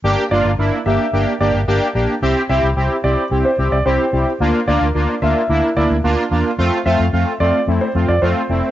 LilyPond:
<<
  \new Staff \with { instrumentName = "Grand piano" } { \time 4/4 \key g \dorian \tempo 4 = 110 r8 d''16 r8. e''8. r16 d''16 r4 r16 | r8 e''16 r8. d''8 r16 c''16 r16 d''16 c''8. r16 | r8 d''16 r8. e''8. r16 d''16 r4 r16 | r8 e''16 r8. d''8 r16 c''16 r16 d''16 c''8. r16 | }
  \new Staff \with { instrumentName = "Analog polysynth" } { \time 4/4 \key g \dorian <bes d' g'>8 <bes d' f'>8 <bes d' e'>8 <bes d' g'>8 <bes d' g'>8 <bes d' g'>8 <bes d' g'>8 <bes d' g'>8 | <c' e' g'>8 <c' e' g'>8 <c' e' g'>8 <c' e' g'>8 <c' e' g'>8 <c' e' g'>8 <c' e' g'>8 <c' e' g'>8 | <bes d' f'>8 <bes d' f'>8 <bes d' f'>8 <bes d' f'>8 <bes d' e'>8 <bes d' e'>8 <bes d' f'>8 <bes d' f'>8 | <a c' f'>8 <a c' f'>8 <a c' f'>8 <a c' f'>8 <a c' e'>8 <a c' f'>8 <a c' f'>8 <a c' e'>8 | }
  \new Staff \with { instrumentName = "Fingered electric bass" } { \clef bass \time 4/4 \key g \dorian g,,16 r16 g,,16 g,,16 g,,16 r16 g,,16 r16 g,,16 r16 g,,16 g,,16 g,,16 r16 bes,,16 r16 | c,16 r16 c,16 c,16 c,16 r16 c,16 r16 c,16 r16 c,16 c,16 c,16 r16 c,16 r16 | d,16 r16 d,16 d,16 d,16 r16 d,16 r16 d,16 r16 d,16 d,16 d,16 r16 e,16 r16 | f,16 r16 f,16 f,16 f,16 r16 f,16 r16 f,16 r16 f,16 f,16 f,16 r16 f,,16 r16 | }
>>